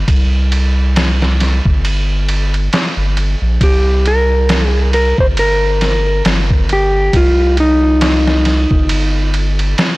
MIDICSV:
0, 0, Header, 1, 4, 480
1, 0, Start_track
1, 0, Key_signature, -3, "minor"
1, 0, Tempo, 882353
1, 40, Time_signature, 4, 2, 24, 8
1, 5424, End_track
2, 0, Start_track
2, 0, Title_t, "Clean electric guitar"
2, 0, Program_c, 0, 27
2, 1977, Note_on_c, 0, 67, 80
2, 2216, Note_off_c, 0, 67, 0
2, 2217, Note_on_c, 0, 70, 82
2, 2538, Note_off_c, 0, 70, 0
2, 2538, Note_on_c, 0, 68, 82
2, 2667, Note_off_c, 0, 68, 0
2, 2688, Note_on_c, 0, 70, 93
2, 2826, Note_off_c, 0, 70, 0
2, 2831, Note_on_c, 0, 72, 98
2, 2858, Note_off_c, 0, 72, 0
2, 2934, Note_on_c, 0, 70, 88
2, 3385, Note_off_c, 0, 70, 0
2, 3659, Note_on_c, 0, 67, 104
2, 3897, Note_off_c, 0, 67, 0
2, 3897, Note_on_c, 0, 65, 94
2, 4112, Note_off_c, 0, 65, 0
2, 4135, Note_on_c, 0, 63, 85
2, 5424, Note_off_c, 0, 63, 0
2, 5424, End_track
3, 0, Start_track
3, 0, Title_t, "Analog synth bass"
3, 0, Program_c, 1, 38
3, 44, Note_on_c, 1, 36, 94
3, 873, Note_off_c, 1, 36, 0
3, 900, Note_on_c, 1, 31, 87
3, 1462, Note_off_c, 1, 31, 0
3, 1617, Note_on_c, 1, 31, 88
3, 1824, Note_off_c, 1, 31, 0
3, 1860, Note_on_c, 1, 34, 92
3, 1949, Note_off_c, 1, 34, 0
3, 1964, Note_on_c, 1, 36, 98
3, 2793, Note_off_c, 1, 36, 0
3, 2821, Note_on_c, 1, 31, 92
3, 3382, Note_off_c, 1, 31, 0
3, 3400, Note_on_c, 1, 31, 96
3, 3860, Note_off_c, 1, 31, 0
3, 3881, Note_on_c, 1, 36, 98
3, 4712, Note_off_c, 1, 36, 0
3, 4738, Note_on_c, 1, 31, 96
3, 5301, Note_off_c, 1, 31, 0
3, 5424, End_track
4, 0, Start_track
4, 0, Title_t, "Drums"
4, 42, Note_on_c, 9, 36, 91
4, 43, Note_on_c, 9, 51, 80
4, 97, Note_off_c, 9, 36, 0
4, 97, Note_off_c, 9, 51, 0
4, 282, Note_on_c, 9, 51, 62
4, 337, Note_off_c, 9, 51, 0
4, 523, Note_on_c, 9, 51, 90
4, 528, Note_on_c, 9, 38, 116
4, 578, Note_off_c, 9, 51, 0
4, 583, Note_off_c, 9, 38, 0
4, 665, Note_on_c, 9, 38, 51
4, 719, Note_off_c, 9, 38, 0
4, 764, Note_on_c, 9, 51, 61
4, 769, Note_on_c, 9, 38, 34
4, 818, Note_off_c, 9, 51, 0
4, 823, Note_off_c, 9, 38, 0
4, 900, Note_on_c, 9, 36, 89
4, 955, Note_off_c, 9, 36, 0
4, 1005, Note_on_c, 9, 51, 76
4, 1059, Note_off_c, 9, 51, 0
4, 1243, Note_on_c, 9, 51, 63
4, 1298, Note_off_c, 9, 51, 0
4, 1382, Note_on_c, 9, 51, 40
4, 1437, Note_off_c, 9, 51, 0
4, 1484, Note_on_c, 9, 51, 75
4, 1488, Note_on_c, 9, 38, 107
4, 1538, Note_off_c, 9, 51, 0
4, 1543, Note_off_c, 9, 38, 0
4, 1724, Note_on_c, 9, 51, 59
4, 1778, Note_off_c, 9, 51, 0
4, 1963, Note_on_c, 9, 36, 99
4, 1963, Note_on_c, 9, 51, 78
4, 2017, Note_off_c, 9, 36, 0
4, 2017, Note_off_c, 9, 51, 0
4, 2206, Note_on_c, 9, 51, 60
4, 2260, Note_off_c, 9, 51, 0
4, 2443, Note_on_c, 9, 51, 88
4, 2448, Note_on_c, 9, 38, 117
4, 2497, Note_off_c, 9, 51, 0
4, 2502, Note_off_c, 9, 38, 0
4, 2683, Note_on_c, 9, 51, 65
4, 2738, Note_off_c, 9, 51, 0
4, 2819, Note_on_c, 9, 36, 89
4, 2874, Note_off_c, 9, 36, 0
4, 2921, Note_on_c, 9, 51, 78
4, 2976, Note_off_c, 9, 51, 0
4, 3161, Note_on_c, 9, 51, 64
4, 3166, Note_on_c, 9, 38, 43
4, 3216, Note_off_c, 9, 51, 0
4, 3221, Note_off_c, 9, 38, 0
4, 3400, Note_on_c, 9, 51, 78
4, 3405, Note_on_c, 9, 38, 109
4, 3454, Note_off_c, 9, 51, 0
4, 3459, Note_off_c, 9, 38, 0
4, 3538, Note_on_c, 9, 36, 83
4, 3593, Note_off_c, 9, 36, 0
4, 3640, Note_on_c, 9, 51, 62
4, 3695, Note_off_c, 9, 51, 0
4, 3880, Note_on_c, 9, 51, 77
4, 3881, Note_on_c, 9, 36, 97
4, 3935, Note_off_c, 9, 36, 0
4, 3935, Note_off_c, 9, 51, 0
4, 4119, Note_on_c, 9, 51, 63
4, 4173, Note_off_c, 9, 51, 0
4, 4358, Note_on_c, 9, 51, 93
4, 4363, Note_on_c, 9, 38, 110
4, 4413, Note_off_c, 9, 51, 0
4, 4417, Note_off_c, 9, 38, 0
4, 4501, Note_on_c, 9, 38, 49
4, 4556, Note_off_c, 9, 38, 0
4, 4598, Note_on_c, 9, 51, 65
4, 4603, Note_on_c, 9, 38, 36
4, 4652, Note_off_c, 9, 51, 0
4, 4657, Note_off_c, 9, 38, 0
4, 4737, Note_on_c, 9, 36, 88
4, 4791, Note_off_c, 9, 36, 0
4, 4837, Note_on_c, 9, 51, 82
4, 4892, Note_off_c, 9, 51, 0
4, 5080, Note_on_c, 9, 51, 63
4, 5134, Note_off_c, 9, 51, 0
4, 5218, Note_on_c, 9, 51, 42
4, 5272, Note_off_c, 9, 51, 0
4, 5320, Note_on_c, 9, 51, 80
4, 5325, Note_on_c, 9, 38, 102
4, 5375, Note_off_c, 9, 51, 0
4, 5380, Note_off_c, 9, 38, 0
4, 5424, End_track
0, 0, End_of_file